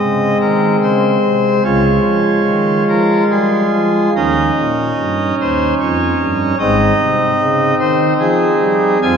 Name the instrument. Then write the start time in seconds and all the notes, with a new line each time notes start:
pipe organ
Already playing: G#3 C4 D#5
0.00 C#3
0.41 D#3 A#4
0.82 C#3 C5
1.24 C3
1.64 C#2 C#3 G#3 F4 C#5
2.05 F3
2.48 D#3
2.89 F3 A#4
3.30 G3 G#4
3.72 F3
4.15 D#2 D#3 C#4 D#4 D#5
4.58 A#2
4.99 G2
5.41 D#2 C5
5.80 F2 C#5
6.20 G2
6.59 G#1 G#2 C4 D#4 D#5
7.00 C3
7.40 C#3
7.80 D#3 C5
8.19 F3 G#4
8.60 G3
9.02 F2 F3 C4 F4 G#5